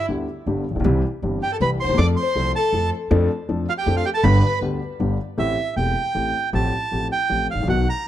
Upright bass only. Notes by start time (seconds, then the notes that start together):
0.09 D2
0.46 G1
0.71 A1
0.75 A#1
0.80 B1
0.84 C2
1.22 G1
1.60 C2
1.84 D2
1.89 D#2
1.94 E2
1.98 F2
2.35 C2
2.73 F2
3.11 F2
3.49 F2
3.86 F2
4.23 G1
4.61 D2
5.00 G1
5.38 A1
5.76 E1
6.15 A1
6.53 A1
6.92 A1
7.30 A1
7.55 G#1
7.59 A1
7.64 A#1
7.68 B1